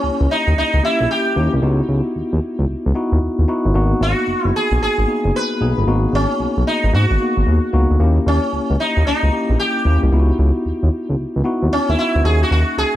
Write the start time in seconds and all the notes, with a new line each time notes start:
Already playing: A#3 C#4 E4 G4
0.03 C#2
0.20 C#2
0.31 D#4
0.47 D#2
0.56 C#2 D#4
0.73 C#2
0.82 A#3 C#4 E4 G4
1.00 A#1
1.11 G4
1.36 D#2 A#3 C#4 E4 G4
1.53 C2
1.62 C#2 B3 D#4 E4 F#4
1.88 C#2
2.15 D#2
2.32 D#2
2.58 C#2
2.68 C#2
2.86 C#2
2.95 B3 D#4 E4 F#4
3.12 D#2
3.21 D#2
3.38 D#2
3.48 B3 D#4 E4 F#4
3.65 G1
3.74 G#1 A#3 B3 D#4 F#4
4.00 G#1 F#4
4.27 F#1
4.44 F#1 E4
4.56 G#4
4.71 B1
4.83 G#4
4.98 G#1
5.07 A#3 B3 D#4 G#4
5.24 F#1
5.36 B4
5.60 B1 A#3 B3 D#4 G#4
5.77 G1
5.86 G#1 A#3 B3 D#4 F#4
6.12 G#1 C#4
6.39 B1
6.57 B1
6.67 D#4
6.83 G#1
6.93 G#2 F#4
7.10 G#1
7.20 A#3 B3 D#4 F#4
7.37 G#1
7.46 D#2
7.73 C#2 A#3 B3 D#4 F#4
7.90 D2
7.99 D#2 A#3 C#4 E4 G4
8.26 D#2 C#4
8.52 C#2
8.70 C#2
8.80 D#4
8.96 D#2
9.06 C#2 D#4
9.23 C#2
9.32 A#3 C#4 E4 G4
9.49 A#1
9.59 G4
9.85 D#2 A#3 C#4 E4 G4
10.03 C2
10.12 C#2 B3 D#4 E4 F4
10.19 F#4
10.38 C#2
10.65 D#2
10.82 D#2
11.09 C#2
11.36 C#2
11.44 B3 D#4 E4 F#4
11.62 D#2
11.73 C#4
11.88 D#2 E4
11.97 B3 D#4 E4 F#4
12.15 D2
12.24 D#2 A#3 C#4 D#4 F#4 G#4
12.43 F#4
12.50 D#2 F#4
12.77 C#2 G#4